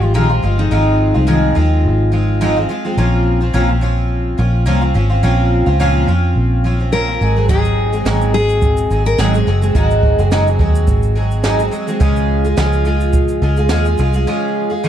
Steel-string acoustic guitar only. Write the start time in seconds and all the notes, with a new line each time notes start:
Already playing: G4
0.04 F4
0.15 F4
0.59 D#4
6.93 A#4
7.49 G#4
8.34 G#4
9.06 A#4
9.19 G#4
9.76 F#4